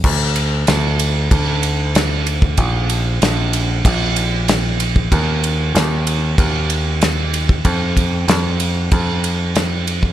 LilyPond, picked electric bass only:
\new Staff \with { instrumentName = "Picked electric bass" } { \clef bass \time 4/4 \key d \phrygian \tempo 4 = 95 d,4 d,4 d,2 | bes,,4 bes,,4 bes,,2 | ees,4 ees,4 ees,2 | f,4 f,4 f,2 | }